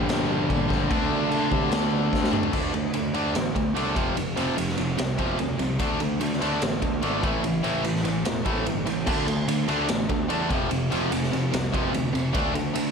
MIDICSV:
0, 0, Header, 1, 4, 480
1, 0, Start_track
1, 0, Key_signature, -1, "minor"
1, 0, Tempo, 408441
1, 1058, Time_signature, 4, 2, 24, 8
1, 15175, End_track
2, 0, Start_track
2, 0, Title_t, "Distorted electric guitar"
2, 0, Program_c, 0, 30
2, 0, Note_on_c, 0, 43, 84
2, 0, Note_on_c, 0, 50, 108
2, 0, Note_on_c, 0, 55, 109
2, 779, Note_off_c, 0, 55, 0
2, 793, Note_on_c, 0, 55, 88
2, 794, Note_off_c, 0, 43, 0
2, 799, Note_off_c, 0, 50, 0
2, 813, Note_on_c, 0, 50, 84
2, 831, Note_on_c, 0, 43, 69
2, 1030, Note_off_c, 0, 55, 0
2, 1033, Note_off_c, 0, 50, 0
2, 1047, Note_on_c, 0, 50, 88
2, 1049, Note_off_c, 0, 43, 0
2, 1064, Note_on_c, 0, 57, 89
2, 1082, Note_on_c, 0, 62, 106
2, 2702, Note_off_c, 0, 62, 0
2, 2712, Note_off_c, 0, 50, 0
2, 2717, Note_on_c, 0, 62, 86
2, 2721, Note_off_c, 0, 57, 0
2, 2738, Note_on_c, 0, 57, 76
2, 2752, Note_on_c, 0, 50, 71
2, 2950, Note_off_c, 0, 62, 0
2, 2953, Note_off_c, 0, 50, 0
2, 2960, Note_off_c, 0, 57, 0
2, 2967, Note_on_c, 0, 50, 92
2, 2977, Note_on_c, 0, 57, 87
2, 2983, Note_on_c, 0, 62, 90
2, 3195, Note_off_c, 0, 50, 0
2, 3200, Note_off_c, 0, 57, 0
2, 3203, Note_off_c, 0, 62, 0
2, 3215, Note_on_c, 0, 50, 74
2, 3219, Note_on_c, 0, 57, 83
2, 3429, Note_off_c, 0, 50, 0
2, 3431, Note_off_c, 0, 57, 0
2, 3455, Note_on_c, 0, 50, 74
2, 3456, Note_on_c, 0, 57, 73
2, 3669, Note_off_c, 0, 50, 0
2, 3669, Note_off_c, 0, 57, 0
2, 3687, Note_on_c, 0, 50, 70
2, 3698, Note_on_c, 0, 57, 86
2, 3702, Note_on_c, 0, 62, 86
2, 3915, Note_off_c, 0, 50, 0
2, 3920, Note_off_c, 0, 57, 0
2, 3922, Note_off_c, 0, 62, 0
2, 3932, Note_on_c, 0, 50, 79
2, 3934, Note_on_c, 0, 57, 74
2, 4147, Note_off_c, 0, 50, 0
2, 4148, Note_off_c, 0, 57, 0
2, 4173, Note_on_c, 0, 50, 69
2, 4182, Note_on_c, 0, 57, 71
2, 4388, Note_off_c, 0, 50, 0
2, 4392, Note_off_c, 0, 57, 0
2, 4416, Note_on_c, 0, 50, 91
2, 4424, Note_on_c, 0, 57, 82
2, 4429, Note_on_c, 0, 62, 99
2, 4639, Note_off_c, 0, 50, 0
2, 4643, Note_off_c, 0, 57, 0
2, 4645, Note_off_c, 0, 62, 0
2, 4648, Note_on_c, 0, 41, 87
2, 4655, Note_on_c, 0, 48, 97
2, 4660, Note_on_c, 0, 53, 94
2, 4875, Note_off_c, 0, 41, 0
2, 4878, Note_off_c, 0, 48, 0
2, 4881, Note_off_c, 0, 53, 0
2, 4890, Note_on_c, 0, 41, 75
2, 4895, Note_on_c, 0, 48, 90
2, 5106, Note_off_c, 0, 41, 0
2, 5109, Note_off_c, 0, 48, 0
2, 5122, Note_on_c, 0, 41, 103
2, 5131, Note_on_c, 0, 48, 101
2, 5137, Note_on_c, 0, 53, 111
2, 5352, Note_off_c, 0, 41, 0
2, 5357, Note_off_c, 0, 48, 0
2, 5360, Note_off_c, 0, 53, 0
2, 5375, Note_on_c, 0, 41, 67
2, 5381, Note_on_c, 0, 48, 73
2, 5589, Note_off_c, 0, 41, 0
2, 5592, Note_off_c, 0, 48, 0
2, 5612, Note_on_c, 0, 41, 73
2, 5617, Note_on_c, 0, 48, 76
2, 5828, Note_off_c, 0, 41, 0
2, 5831, Note_off_c, 0, 48, 0
2, 5845, Note_on_c, 0, 41, 69
2, 5852, Note_on_c, 0, 48, 83
2, 6065, Note_off_c, 0, 41, 0
2, 6068, Note_off_c, 0, 48, 0
2, 6086, Note_on_c, 0, 41, 86
2, 6096, Note_on_c, 0, 48, 96
2, 6099, Note_on_c, 0, 53, 111
2, 6312, Note_off_c, 0, 41, 0
2, 6320, Note_off_c, 0, 48, 0
2, 6321, Note_off_c, 0, 53, 0
2, 6326, Note_on_c, 0, 41, 80
2, 6333, Note_on_c, 0, 48, 78
2, 6545, Note_off_c, 0, 41, 0
2, 6549, Note_off_c, 0, 48, 0
2, 6563, Note_on_c, 0, 41, 70
2, 6571, Note_on_c, 0, 48, 79
2, 6784, Note_off_c, 0, 41, 0
2, 6788, Note_off_c, 0, 48, 0
2, 6805, Note_on_c, 0, 50, 99
2, 6813, Note_on_c, 0, 57, 85
2, 6819, Note_on_c, 0, 62, 105
2, 7035, Note_off_c, 0, 50, 0
2, 7039, Note_off_c, 0, 57, 0
2, 7041, Note_off_c, 0, 62, 0
2, 7053, Note_on_c, 0, 50, 82
2, 7060, Note_on_c, 0, 57, 87
2, 7269, Note_off_c, 0, 50, 0
2, 7273, Note_off_c, 0, 57, 0
2, 7287, Note_on_c, 0, 50, 83
2, 7291, Note_on_c, 0, 57, 79
2, 7506, Note_off_c, 0, 50, 0
2, 7508, Note_off_c, 0, 57, 0
2, 7527, Note_on_c, 0, 50, 87
2, 7535, Note_on_c, 0, 57, 93
2, 7541, Note_on_c, 0, 62, 103
2, 7756, Note_off_c, 0, 50, 0
2, 7760, Note_off_c, 0, 57, 0
2, 7763, Note_off_c, 0, 62, 0
2, 7775, Note_on_c, 0, 50, 83
2, 7784, Note_on_c, 0, 57, 86
2, 7991, Note_off_c, 0, 50, 0
2, 7995, Note_off_c, 0, 57, 0
2, 8009, Note_on_c, 0, 50, 75
2, 8015, Note_on_c, 0, 57, 71
2, 8228, Note_off_c, 0, 50, 0
2, 8231, Note_off_c, 0, 57, 0
2, 8246, Note_on_c, 0, 50, 94
2, 8251, Note_on_c, 0, 57, 91
2, 8259, Note_on_c, 0, 62, 82
2, 8476, Note_off_c, 0, 50, 0
2, 8478, Note_off_c, 0, 57, 0
2, 8482, Note_off_c, 0, 62, 0
2, 8490, Note_on_c, 0, 45, 85
2, 8501, Note_on_c, 0, 52, 103
2, 8508, Note_on_c, 0, 57, 100
2, 8718, Note_off_c, 0, 45, 0
2, 8724, Note_off_c, 0, 52, 0
2, 8727, Note_off_c, 0, 57, 0
2, 8730, Note_on_c, 0, 45, 66
2, 8737, Note_on_c, 0, 52, 89
2, 8949, Note_off_c, 0, 45, 0
2, 8952, Note_off_c, 0, 52, 0
2, 8967, Note_on_c, 0, 45, 93
2, 8975, Note_on_c, 0, 52, 105
2, 8981, Note_on_c, 0, 57, 104
2, 9197, Note_off_c, 0, 45, 0
2, 9198, Note_off_c, 0, 52, 0
2, 9204, Note_off_c, 0, 57, 0
2, 9209, Note_on_c, 0, 45, 68
2, 9212, Note_on_c, 0, 52, 78
2, 9429, Note_off_c, 0, 45, 0
2, 9430, Note_off_c, 0, 52, 0
2, 9450, Note_on_c, 0, 45, 70
2, 9458, Note_on_c, 0, 52, 77
2, 9669, Note_off_c, 0, 45, 0
2, 9673, Note_off_c, 0, 52, 0
2, 9693, Note_on_c, 0, 45, 73
2, 9697, Note_on_c, 0, 52, 90
2, 9911, Note_off_c, 0, 45, 0
2, 9913, Note_off_c, 0, 52, 0
2, 9927, Note_on_c, 0, 45, 100
2, 9935, Note_on_c, 0, 52, 98
2, 9940, Note_on_c, 0, 57, 109
2, 10158, Note_off_c, 0, 45, 0
2, 10158, Note_off_c, 0, 52, 0
2, 10164, Note_off_c, 0, 57, 0
2, 10170, Note_on_c, 0, 45, 70
2, 10173, Note_on_c, 0, 52, 93
2, 10390, Note_off_c, 0, 45, 0
2, 10391, Note_off_c, 0, 52, 0
2, 10408, Note_on_c, 0, 45, 76
2, 10413, Note_on_c, 0, 52, 74
2, 10629, Note_off_c, 0, 45, 0
2, 10631, Note_off_c, 0, 52, 0
2, 10649, Note_on_c, 0, 50, 89
2, 10652, Note_on_c, 0, 57, 85
2, 10661, Note_on_c, 0, 62, 84
2, 10879, Note_off_c, 0, 50, 0
2, 10881, Note_off_c, 0, 57, 0
2, 10885, Note_off_c, 0, 62, 0
2, 10891, Note_on_c, 0, 50, 80
2, 10893, Note_on_c, 0, 57, 83
2, 11111, Note_off_c, 0, 50, 0
2, 11112, Note_off_c, 0, 57, 0
2, 11141, Note_on_c, 0, 50, 69
2, 11144, Note_on_c, 0, 57, 74
2, 11356, Note_off_c, 0, 50, 0
2, 11357, Note_off_c, 0, 57, 0
2, 11372, Note_on_c, 0, 50, 86
2, 11379, Note_on_c, 0, 57, 90
2, 11385, Note_on_c, 0, 62, 94
2, 11598, Note_off_c, 0, 50, 0
2, 11605, Note_off_c, 0, 57, 0
2, 11608, Note_off_c, 0, 62, 0
2, 11612, Note_on_c, 0, 50, 74
2, 11623, Note_on_c, 0, 57, 92
2, 11832, Note_off_c, 0, 50, 0
2, 11837, Note_off_c, 0, 57, 0
2, 11859, Note_on_c, 0, 50, 74
2, 11861, Note_on_c, 0, 57, 81
2, 12075, Note_off_c, 0, 50, 0
2, 12076, Note_off_c, 0, 57, 0
2, 12088, Note_on_c, 0, 50, 83
2, 12095, Note_on_c, 0, 57, 90
2, 12106, Note_on_c, 0, 62, 102
2, 12319, Note_off_c, 0, 50, 0
2, 12323, Note_off_c, 0, 57, 0
2, 12328, Note_off_c, 0, 62, 0
2, 12335, Note_on_c, 0, 41, 83
2, 12341, Note_on_c, 0, 48, 100
2, 12347, Note_on_c, 0, 53, 101
2, 12563, Note_off_c, 0, 41, 0
2, 12566, Note_off_c, 0, 48, 0
2, 12569, Note_off_c, 0, 53, 0
2, 12579, Note_on_c, 0, 41, 79
2, 12583, Note_on_c, 0, 48, 91
2, 12795, Note_off_c, 0, 41, 0
2, 12797, Note_off_c, 0, 48, 0
2, 12813, Note_on_c, 0, 41, 97
2, 12822, Note_on_c, 0, 48, 109
2, 12831, Note_on_c, 0, 53, 101
2, 13042, Note_off_c, 0, 41, 0
2, 13047, Note_off_c, 0, 48, 0
2, 13051, Note_off_c, 0, 53, 0
2, 13061, Note_on_c, 0, 41, 72
2, 13069, Note_on_c, 0, 48, 82
2, 13277, Note_off_c, 0, 41, 0
2, 13281, Note_off_c, 0, 48, 0
2, 13294, Note_on_c, 0, 41, 70
2, 13304, Note_on_c, 0, 48, 76
2, 13513, Note_off_c, 0, 41, 0
2, 13518, Note_off_c, 0, 48, 0
2, 13535, Note_on_c, 0, 41, 85
2, 13542, Note_on_c, 0, 48, 83
2, 13754, Note_off_c, 0, 41, 0
2, 13757, Note_off_c, 0, 48, 0
2, 13780, Note_on_c, 0, 41, 92
2, 13787, Note_on_c, 0, 48, 99
2, 13793, Note_on_c, 0, 53, 103
2, 14002, Note_off_c, 0, 41, 0
2, 14003, Note_off_c, 0, 48, 0
2, 14013, Note_off_c, 0, 53, 0
2, 14016, Note_on_c, 0, 41, 68
2, 14017, Note_on_c, 0, 48, 91
2, 14234, Note_off_c, 0, 41, 0
2, 14235, Note_off_c, 0, 48, 0
2, 14259, Note_on_c, 0, 41, 70
2, 14262, Note_on_c, 0, 48, 84
2, 14476, Note_off_c, 0, 41, 0
2, 14477, Note_off_c, 0, 48, 0
2, 14486, Note_on_c, 0, 50, 84
2, 14498, Note_on_c, 0, 57, 86
2, 14505, Note_on_c, 0, 62, 100
2, 14719, Note_off_c, 0, 50, 0
2, 14725, Note_off_c, 0, 57, 0
2, 14728, Note_off_c, 0, 62, 0
2, 14738, Note_on_c, 0, 50, 76
2, 14741, Note_on_c, 0, 57, 84
2, 14952, Note_off_c, 0, 50, 0
2, 14957, Note_off_c, 0, 57, 0
2, 14966, Note_on_c, 0, 50, 72
2, 14973, Note_on_c, 0, 57, 82
2, 15175, Note_off_c, 0, 50, 0
2, 15175, Note_off_c, 0, 57, 0
2, 15175, End_track
3, 0, Start_track
3, 0, Title_t, "Picked electric bass"
3, 0, Program_c, 1, 34
3, 93, Note_on_c, 1, 34, 90
3, 291, Note_off_c, 1, 34, 0
3, 340, Note_on_c, 1, 34, 91
3, 534, Note_off_c, 1, 34, 0
3, 594, Note_on_c, 1, 34, 90
3, 782, Note_off_c, 1, 34, 0
3, 826, Note_on_c, 1, 34, 95
3, 1018, Note_off_c, 1, 34, 0
3, 1067, Note_on_c, 1, 38, 102
3, 1258, Note_off_c, 1, 38, 0
3, 1295, Note_on_c, 1, 38, 93
3, 1490, Note_off_c, 1, 38, 0
3, 1537, Note_on_c, 1, 50, 83
3, 1731, Note_off_c, 1, 50, 0
3, 1785, Note_on_c, 1, 48, 88
3, 1975, Note_off_c, 1, 48, 0
3, 2024, Note_on_c, 1, 38, 100
3, 2215, Note_off_c, 1, 38, 0
3, 2270, Note_on_c, 1, 38, 87
3, 2458, Note_off_c, 1, 38, 0
3, 2506, Note_on_c, 1, 38, 81
3, 2890, Note_off_c, 1, 38, 0
3, 2979, Note_on_c, 1, 38, 94
3, 3187, Note_off_c, 1, 38, 0
3, 3224, Note_on_c, 1, 38, 87
3, 3429, Note_off_c, 1, 38, 0
3, 3457, Note_on_c, 1, 38, 76
3, 3665, Note_off_c, 1, 38, 0
3, 3694, Note_on_c, 1, 38, 93
3, 3903, Note_off_c, 1, 38, 0
3, 3939, Note_on_c, 1, 33, 95
3, 4146, Note_off_c, 1, 33, 0
3, 4179, Note_on_c, 1, 38, 74
3, 4386, Note_off_c, 1, 38, 0
3, 4420, Note_on_c, 1, 36, 81
3, 4627, Note_off_c, 1, 36, 0
3, 4660, Note_on_c, 1, 29, 82
3, 4867, Note_off_c, 1, 29, 0
3, 4914, Note_on_c, 1, 29, 95
3, 5115, Note_off_c, 1, 29, 0
3, 5136, Note_on_c, 1, 29, 90
3, 5345, Note_off_c, 1, 29, 0
3, 5385, Note_on_c, 1, 29, 83
3, 5590, Note_off_c, 1, 29, 0
3, 5623, Note_on_c, 1, 29, 95
3, 5829, Note_off_c, 1, 29, 0
3, 5861, Note_on_c, 1, 36, 91
3, 6068, Note_off_c, 1, 36, 0
3, 6099, Note_on_c, 1, 29, 89
3, 6307, Note_off_c, 1, 29, 0
3, 6335, Note_on_c, 1, 38, 77
3, 6545, Note_off_c, 1, 38, 0
3, 6571, Note_on_c, 1, 36, 95
3, 6783, Note_off_c, 1, 36, 0
3, 6812, Note_on_c, 1, 38, 93
3, 7023, Note_off_c, 1, 38, 0
3, 7046, Note_on_c, 1, 38, 93
3, 7260, Note_off_c, 1, 38, 0
3, 7290, Note_on_c, 1, 38, 79
3, 7502, Note_off_c, 1, 38, 0
3, 7541, Note_on_c, 1, 38, 92
3, 7749, Note_off_c, 1, 38, 0
3, 7779, Note_on_c, 1, 33, 91
3, 7987, Note_off_c, 1, 33, 0
3, 8020, Note_on_c, 1, 38, 81
3, 8229, Note_off_c, 1, 38, 0
3, 8250, Note_on_c, 1, 32, 86
3, 8463, Note_off_c, 1, 32, 0
3, 8501, Note_on_c, 1, 33, 84
3, 8709, Note_off_c, 1, 33, 0
3, 8735, Note_on_c, 1, 33, 100
3, 8946, Note_off_c, 1, 33, 0
3, 8976, Note_on_c, 1, 33, 82
3, 9187, Note_off_c, 1, 33, 0
3, 9209, Note_on_c, 1, 33, 74
3, 9423, Note_off_c, 1, 33, 0
3, 9443, Note_on_c, 1, 33, 86
3, 9660, Note_off_c, 1, 33, 0
3, 9682, Note_on_c, 1, 28, 91
3, 9899, Note_off_c, 1, 28, 0
3, 9938, Note_on_c, 1, 33, 80
3, 10148, Note_off_c, 1, 33, 0
3, 10170, Note_on_c, 1, 31, 75
3, 10384, Note_off_c, 1, 31, 0
3, 10408, Note_on_c, 1, 33, 84
3, 10664, Note_off_c, 1, 33, 0
3, 10664, Note_on_c, 1, 38, 94
3, 10872, Note_off_c, 1, 38, 0
3, 10892, Note_on_c, 1, 38, 84
3, 11106, Note_off_c, 1, 38, 0
3, 11138, Note_on_c, 1, 38, 82
3, 11349, Note_off_c, 1, 38, 0
3, 11387, Note_on_c, 1, 38, 98
3, 11594, Note_off_c, 1, 38, 0
3, 11625, Note_on_c, 1, 33, 96
3, 11834, Note_off_c, 1, 33, 0
3, 11868, Note_on_c, 1, 38, 81
3, 12075, Note_off_c, 1, 38, 0
3, 12110, Note_on_c, 1, 40, 77
3, 12316, Note_off_c, 1, 40, 0
3, 12342, Note_on_c, 1, 29, 83
3, 12552, Note_off_c, 1, 29, 0
3, 12587, Note_on_c, 1, 29, 98
3, 12795, Note_off_c, 1, 29, 0
3, 12838, Note_on_c, 1, 29, 93
3, 13041, Note_off_c, 1, 29, 0
3, 13069, Note_on_c, 1, 29, 92
3, 13276, Note_off_c, 1, 29, 0
3, 13319, Note_on_c, 1, 29, 89
3, 13522, Note_off_c, 1, 29, 0
3, 13565, Note_on_c, 1, 36, 91
3, 13765, Note_off_c, 1, 36, 0
3, 13796, Note_on_c, 1, 29, 83
3, 14000, Note_off_c, 1, 29, 0
3, 14038, Note_on_c, 1, 38, 82
3, 14241, Note_off_c, 1, 38, 0
3, 14268, Note_on_c, 1, 29, 91
3, 14476, Note_off_c, 1, 29, 0
3, 14510, Note_on_c, 1, 38, 97
3, 14717, Note_off_c, 1, 38, 0
3, 14736, Note_on_c, 1, 38, 87
3, 14949, Note_off_c, 1, 38, 0
3, 14984, Note_on_c, 1, 38, 81
3, 15175, Note_off_c, 1, 38, 0
3, 15175, End_track
4, 0, Start_track
4, 0, Title_t, "Drums"
4, 104, Note_on_c, 9, 49, 65
4, 118, Note_on_c, 9, 38, 127
4, 221, Note_off_c, 9, 49, 0
4, 236, Note_off_c, 9, 38, 0
4, 587, Note_on_c, 9, 36, 79
4, 589, Note_on_c, 9, 49, 55
4, 705, Note_off_c, 9, 36, 0
4, 707, Note_off_c, 9, 49, 0
4, 827, Note_on_c, 9, 36, 87
4, 844, Note_on_c, 9, 38, 31
4, 944, Note_off_c, 9, 36, 0
4, 961, Note_off_c, 9, 38, 0
4, 1066, Note_on_c, 9, 36, 109
4, 1068, Note_on_c, 9, 49, 57
4, 1184, Note_off_c, 9, 36, 0
4, 1185, Note_off_c, 9, 49, 0
4, 1545, Note_on_c, 9, 49, 60
4, 1662, Note_off_c, 9, 49, 0
4, 1783, Note_on_c, 9, 36, 80
4, 1900, Note_off_c, 9, 36, 0
4, 2016, Note_on_c, 9, 49, 68
4, 2030, Note_on_c, 9, 38, 122
4, 2133, Note_off_c, 9, 49, 0
4, 2148, Note_off_c, 9, 38, 0
4, 2502, Note_on_c, 9, 36, 77
4, 2517, Note_on_c, 9, 38, 65
4, 2619, Note_off_c, 9, 36, 0
4, 2633, Note_off_c, 9, 38, 0
4, 2633, Note_on_c, 9, 38, 71
4, 2738, Note_on_c, 9, 45, 88
4, 2750, Note_off_c, 9, 38, 0
4, 2856, Note_off_c, 9, 45, 0
4, 2858, Note_on_c, 9, 43, 95
4, 2974, Note_on_c, 9, 57, 111
4, 2976, Note_off_c, 9, 43, 0
4, 2980, Note_on_c, 9, 36, 105
4, 3092, Note_off_c, 9, 57, 0
4, 3097, Note_off_c, 9, 36, 0
4, 3216, Note_on_c, 9, 51, 70
4, 3334, Note_off_c, 9, 51, 0
4, 3449, Note_on_c, 9, 51, 96
4, 3567, Note_off_c, 9, 51, 0
4, 3694, Note_on_c, 9, 51, 68
4, 3812, Note_off_c, 9, 51, 0
4, 3937, Note_on_c, 9, 51, 98
4, 3951, Note_on_c, 9, 38, 107
4, 4054, Note_off_c, 9, 51, 0
4, 4068, Note_off_c, 9, 38, 0
4, 4179, Note_on_c, 9, 36, 76
4, 4182, Note_on_c, 9, 51, 70
4, 4297, Note_off_c, 9, 36, 0
4, 4300, Note_off_c, 9, 51, 0
4, 4423, Note_on_c, 9, 51, 78
4, 4541, Note_off_c, 9, 51, 0
4, 4658, Note_on_c, 9, 36, 94
4, 4659, Note_on_c, 9, 51, 64
4, 4775, Note_off_c, 9, 36, 0
4, 4777, Note_off_c, 9, 51, 0
4, 4899, Note_on_c, 9, 51, 79
4, 5017, Note_off_c, 9, 51, 0
4, 5138, Note_on_c, 9, 51, 72
4, 5255, Note_off_c, 9, 51, 0
4, 5381, Note_on_c, 9, 51, 88
4, 5499, Note_off_c, 9, 51, 0
4, 5507, Note_on_c, 9, 38, 35
4, 5611, Note_on_c, 9, 51, 70
4, 5625, Note_off_c, 9, 38, 0
4, 5729, Note_off_c, 9, 51, 0
4, 5857, Note_on_c, 9, 51, 104
4, 5871, Note_on_c, 9, 38, 122
4, 5974, Note_off_c, 9, 51, 0
4, 5988, Note_off_c, 9, 38, 0
4, 6093, Note_on_c, 9, 36, 80
4, 6094, Note_on_c, 9, 51, 74
4, 6211, Note_off_c, 9, 36, 0
4, 6211, Note_off_c, 9, 51, 0
4, 6331, Note_on_c, 9, 51, 83
4, 6448, Note_off_c, 9, 51, 0
4, 6571, Note_on_c, 9, 51, 71
4, 6688, Note_off_c, 9, 51, 0
4, 6809, Note_on_c, 9, 51, 100
4, 6812, Note_on_c, 9, 36, 108
4, 6926, Note_off_c, 9, 51, 0
4, 6929, Note_off_c, 9, 36, 0
4, 7051, Note_on_c, 9, 51, 74
4, 7169, Note_off_c, 9, 51, 0
4, 7294, Note_on_c, 9, 51, 95
4, 7411, Note_off_c, 9, 51, 0
4, 7435, Note_on_c, 9, 38, 34
4, 7541, Note_on_c, 9, 51, 67
4, 7553, Note_off_c, 9, 38, 0
4, 7658, Note_off_c, 9, 51, 0
4, 7776, Note_on_c, 9, 51, 106
4, 7790, Note_on_c, 9, 38, 117
4, 7894, Note_off_c, 9, 51, 0
4, 7908, Note_off_c, 9, 38, 0
4, 8016, Note_on_c, 9, 51, 72
4, 8019, Note_on_c, 9, 36, 76
4, 8133, Note_off_c, 9, 51, 0
4, 8136, Note_off_c, 9, 36, 0
4, 8257, Note_on_c, 9, 51, 73
4, 8374, Note_off_c, 9, 51, 0
4, 8501, Note_on_c, 9, 36, 103
4, 8502, Note_on_c, 9, 51, 59
4, 8619, Note_off_c, 9, 36, 0
4, 8619, Note_off_c, 9, 51, 0
4, 8742, Note_on_c, 9, 51, 79
4, 8860, Note_off_c, 9, 51, 0
4, 8978, Note_on_c, 9, 51, 69
4, 9096, Note_off_c, 9, 51, 0
4, 9219, Note_on_c, 9, 51, 84
4, 9336, Note_off_c, 9, 51, 0
4, 9355, Note_on_c, 9, 38, 33
4, 9458, Note_on_c, 9, 51, 67
4, 9473, Note_off_c, 9, 38, 0
4, 9576, Note_off_c, 9, 51, 0
4, 9698, Note_on_c, 9, 51, 94
4, 9712, Note_on_c, 9, 38, 113
4, 9815, Note_off_c, 9, 51, 0
4, 9829, Note_off_c, 9, 38, 0
4, 9937, Note_on_c, 9, 51, 76
4, 9941, Note_on_c, 9, 36, 81
4, 10055, Note_off_c, 9, 51, 0
4, 10058, Note_off_c, 9, 36, 0
4, 10181, Note_on_c, 9, 51, 87
4, 10299, Note_off_c, 9, 51, 0
4, 10419, Note_on_c, 9, 51, 77
4, 10537, Note_off_c, 9, 51, 0
4, 10656, Note_on_c, 9, 49, 96
4, 10662, Note_on_c, 9, 36, 109
4, 10773, Note_off_c, 9, 49, 0
4, 10780, Note_off_c, 9, 36, 0
4, 10903, Note_on_c, 9, 51, 75
4, 11021, Note_off_c, 9, 51, 0
4, 11145, Note_on_c, 9, 51, 99
4, 11262, Note_off_c, 9, 51, 0
4, 11381, Note_on_c, 9, 51, 66
4, 11498, Note_off_c, 9, 51, 0
4, 11617, Note_on_c, 9, 51, 104
4, 11631, Note_on_c, 9, 38, 115
4, 11735, Note_off_c, 9, 51, 0
4, 11749, Note_off_c, 9, 38, 0
4, 11860, Note_on_c, 9, 51, 73
4, 11864, Note_on_c, 9, 36, 77
4, 11978, Note_off_c, 9, 51, 0
4, 11981, Note_off_c, 9, 36, 0
4, 12103, Note_on_c, 9, 51, 79
4, 12220, Note_off_c, 9, 51, 0
4, 12344, Note_on_c, 9, 51, 66
4, 12346, Note_on_c, 9, 36, 96
4, 12462, Note_off_c, 9, 51, 0
4, 12463, Note_off_c, 9, 36, 0
4, 12584, Note_on_c, 9, 51, 84
4, 12701, Note_off_c, 9, 51, 0
4, 12830, Note_on_c, 9, 51, 63
4, 12948, Note_off_c, 9, 51, 0
4, 13067, Note_on_c, 9, 51, 91
4, 13185, Note_off_c, 9, 51, 0
4, 13203, Note_on_c, 9, 38, 35
4, 13317, Note_on_c, 9, 51, 62
4, 13321, Note_off_c, 9, 38, 0
4, 13434, Note_off_c, 9, 51, 0
4, 13556, Note_on_c, 9, 51, 98
4, 13570, Note_on_c, 9, 38, 112
4, 13674, Note_off_c, 9, 51, 0
4, 13688, Note_off_c, 9, 38, 0
4, 13792, Note_on_c, 9, 36, 84
4, 13798, Note_on_c, 9, 51, 72
4, 13910, Note_off_c, 9, 36, 0
4, 13916, Note_off_c, 9, 51, 0
4, 14036, Note_on_c, 9, 51, 92
4, 14153, Note_off_c, 9, 51, 0
4, 14278, Note_on_c, 9, 51, 71
4, 14396, Note_off_c, 9, 51, 0
4, 14507, Note_on_c, 9, 51, 93
4, 14510, Note_on_c, 9, 36, 106
4, 14625, Note_off_c, 9, 51, 0
4, 14627, Note_off_c, 9, 36, 0
4, 14752, Note_on_c, 9, 51, 72
4, 14869, Note_off_c, 9, 51, 0
4, 14989, Note_on_c, 9, 51, 104
4, 15106, Note_off_c, 9, 51, 0
4, 15175, End_track
0, 0, End_of_file